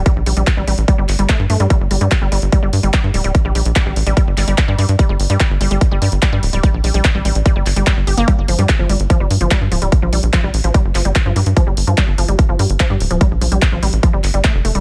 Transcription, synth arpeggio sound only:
\new Staff \with { instrumentName = "Synth arpeggio sound" } { \clef bass \time 4/4 \key g \minor \tempo 4 = 146 g16 r16 g16 g16 r16 g16 g16 r16 g16 g16 r16 g16 a16 r16 a16 g16 | g16 r16 g16 g16 r16 g16 g16 r16 g16 g16 r16 g16 g16 r16 g16 g16 | r16 g16 g16 r16 g16 g16 r16 g16 g16 r16 g16 g16 r16 g16 g16 r16 | g16 g16 r16 g16 g16 r16 g16 g16 r16 g16 g16 r16 g16 g16 r16 g16 |
g16 r16 g16 g16 r16 g16 g16 r16 g16 g16 r16 g16 g16 r16 g'16 bes16 | g16 r16 f16 g16 r16 f16 g16 r16 f16 g16 r16 f16 g16 r16 f16 g16 | r16 f16 g16 r16 f16 g16 r16 f16 g16 r16 f16 g16 r16 f16 g16 r16 | f16 g16 r16 f16 g16 r16 f16 g16 r16 f16 g16 r16 f16 g16 r16 f16 |
g16 r16 f16 g16 r16 f16 g16 r16 f16 g16 r16 g16 a16 r16 a16 g16 | }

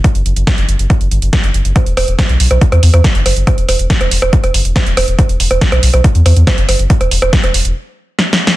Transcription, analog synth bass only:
\new Staff \with { instrumentName = "Analog synth bass" } { \clef bass \time 4/4 \tempo 4 = 140 r16 fis,,16 fis,,16 fis,,16 r16 fis,,16 fis,,16 fis,,16 r16 fis,,16 g,,16 fis,,16 r16 fis,,16 fis,,16 fis,,16 | r16 e,,16 e,,16 e,,16 r16 b,,16 b,,16 b,,16 r16 e,16 e,16 e,16 r16 fis,,16 fis,,16 fis,,16 | r16 e,,16 e,,16 e,,16 r16 e,,16 e,,16 e,,16 r16 e,,16 fis,,16 e,,16 r16 e,,16 e,,16 e,,16 | r16 e,,16 e,,16 e,,16 r16 b,,16 b,,16 b,,16 r16 e,16 e,16 e,16 r16 fis,,16 fis,,16 fis,,16 |
r16 e,,16 e,,16 e,,16 r16 e,,16 e,,16 e,,16 r2 | }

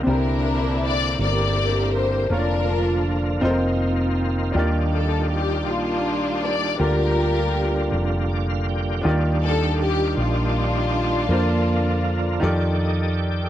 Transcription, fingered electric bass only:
\new Staff \with { instrumentName = "Fingered electric bass" } { \clef bass \time 6/8 \key bes \major \tempo 4. = 53 c,4. g,,4. | f,,4. f,,4. | ees,4. bes,,4. | d,4. f,,4. |
ees,4. bes,,4. | f,4. f,4. | }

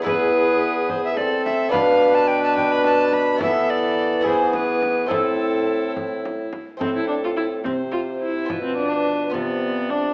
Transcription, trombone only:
\new Staff \with { instrumentName = "Trombone" } { \time 6/8 \key a \minor \tempo 4. = 71 b2 c'4 | d'2. | b4. b4. | c'2~ c'8 r8 |
c'4. c'4. | f4. f4. | }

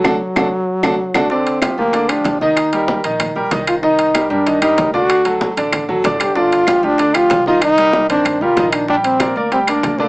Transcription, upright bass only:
\new Staff \with { instrumentName = "Upright bass" } { \clef bass \time 4/4 \key g \minor \tempo 4 = 190 d,8 r8 d,8 r4 d,8 r8 d,8 | r4. d,4. ees,4~ | ees,4. bes,,4 bes,,8 c,4~ | c,4. g,4. d,4~ |
d,4. a,,4. g,,4~ | g,,4. d,4. c,4~ | c,4. g,4 c,8 bes,,4~ | bes,,4. d,4. d,4 | }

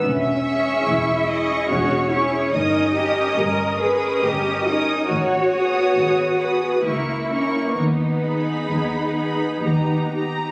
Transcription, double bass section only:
\new Staff \with { instrumentName = "Double bass section" } { \clef bass \time 3/4 \key gis \minor \tempo 4 = 70 e,,4 e,,4 e,,4 | g,,4 g,,4 g,,4 | gis,,4 gis,,4 cis,4 | dis,4 dis,4 dis,4 | }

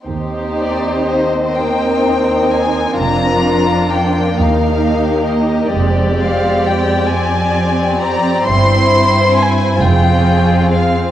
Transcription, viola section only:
\new Staff \with { instrumentName = "Viola section" } { \time 6/8 \key ees \major \tempo 4. = 44 << { ees'4. ees'4. | d'4. ees'4. | c'2.~ | c'4. c'4. | } \\ { c'2.~ | c'4. bes4. | aes4. c'4.~ | c'4. c'4. | } >> }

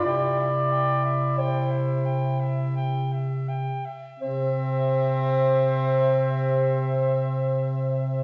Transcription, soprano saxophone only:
\new Staff \with { instrumentName = "Soprano saxophone" } { \time 3/4 \key c \major \tempo 4 = 44 g''16 e''16 g''16 e''16 g''16 e''16 g''16 e''16 g''16 e''16 g''16 e''16 | e''2. | }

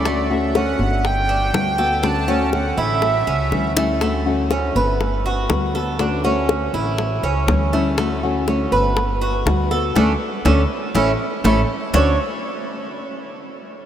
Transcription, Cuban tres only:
\new Staff \with { instrumentName = "Cuban tres" } { \time 4/4 \key d \major \tempo 4 = 121 a4 cis'8 r4 d'4 a'8 | d'8 cis'4 e'4 cis'4 a8 | a4 cis'8 b'4 fis'4 a'8 | d'8 cis'4 e'4 cis'4 a8 |
a4 cis'8 b'4 fis'4 a'8 | <a cis' d'>8 r8 <a cis' d'>8 r8 <a cis' e'>8 r8 <a cis' e'>8 r8 | <d' a' cis''>8 r2. r8 | }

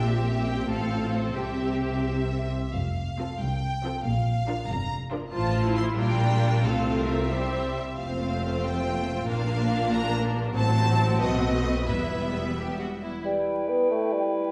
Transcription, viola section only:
\new Staff \with { instrumentName = "Viola section" } { \time 6/8 \key f \major \tempo 4. = 91 << { g'4. f'4. | g'2~ g'8 r8 | r4 c'8 r4 c'8 | r4 d'8 r4 d'8 |
f'8. e'8. d'4. | c'4. c'4 r8 | c'2. | d'2. |
\key e \minor c'2. | b2~ b8 r8 | r2. | } \\ { c'2.~ | c'2~ c'8 r8 | r4 f8 r4 f8 | r4 f8 r4 f8 |
f4. g4. | a4. g4 r8 | a2. | bes2. |
fis4. a4. | g2~ g8 r8 | r2. | } >> }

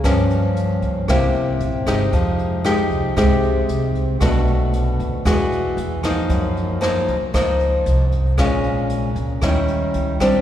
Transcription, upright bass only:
\new Staff \with { instrumentName = "Upright bass" } { \clef bass \time 4/4 \key f \dorian \tempo 4 = 115 g,4. des,8 c,8 c,8 bes,,8 g,,8 | f,4. c,8 c,4 c,4 | b,,4. d,8 e,4 e,4 | ges,4. des,8 des,4 c,4 |
bes,,4. des,8 ees,4 des,8 bes,,8 | }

